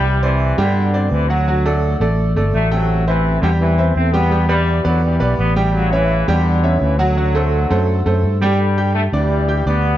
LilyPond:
<<
  \new Staff \with { instrumentName = "Grand piano" } { \time 4/4 \key g \major \tempo 4 = 168 <g g' g''>8 <c' c'' d''>4 <g g' g''>4 <c' c'' d''>4 <fis fis' fis''>8 | <fis fis' fis''>8 <a a' d''>4 <a a' d''>4 <a a' d''>4 <a a' g''>8~ | <a a' g''>8 <c' c'' e''>4 <g g' g''>4 <c' c'' e''>4 <g g' g''>8 | <g g' g''>8 <b b' d''>4 <b b' d''>4 <b b' d''>4 <g g' g''>8~ |
<g g' g''>8 <cis' cis'' e''>4 <g g' g''>4 <cis' cis'' e''>4 <fis fis' fis''>8 | <fis fis' fis''>8 <a a' c''>4 <a a' c''>4 <a a' c''>4 <g g' g''>8 | r8 <g' g'' g'''>4 <d' d'' d'''>4 <g' g'' g'''>8 <d' d'' d'''>4 | }
  \new Staff \with { instrumentName = "Trombone section" } { \clef bass \time 4/4 \key g \major <e g>8 <c e>4 <b, d>4. <c e>8 <d fis>8~ | <d fis>4. r4. <fis a>8 <c fis>8~ | <c fis>8 <c e>4 <b, d>8 <c e>4 <a c'>8 <g b>8~ | <g b>8 <e g>4 <d fis>8 <e g>4 <g b>8 <e g>8 |
<cis fis>8 <cis e>4 <b, d>4. <cis e>8 <d fis>8~ | <d fis>2. r8 <d g>8~ | <d g>4 <d a>8 <e g>4. <g b>4 | }
  \new Staff \with { instrumentName = "Fingered electric bass" } { \clef bass \time 4/4 \key g \major c,4. g,4. d,4~ | d,4. a,,4 g,,8 a,,4~ | a,,4. e,4. e,4~ | e,4. e,4 b,,8 a,,4~ |
a,,4. e,4. d,4~ | d,4. fis,4 fis,8 g,4~ | g,4. d,4. d,4 | }
>>